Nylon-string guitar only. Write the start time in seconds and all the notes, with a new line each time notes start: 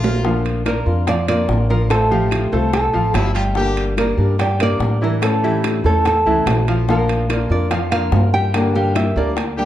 0.68 A#4
1.08 D5
1.29 D5
1.70 A#4
1.90 A4
2.12 G4
2.53 A4
2.73 A4
3.18 G4
4.01 A#4
4.41 D5
4.63 D5
5.04 A#4
5.24 A4
5.44 G4
5.86 A4
6.07 A4
6.90 A#4
7.35 A4
7.52 D5
7.72 F5
7.92 F5
8.34 G5
8.75 F5
8.95 E5
9.17 D5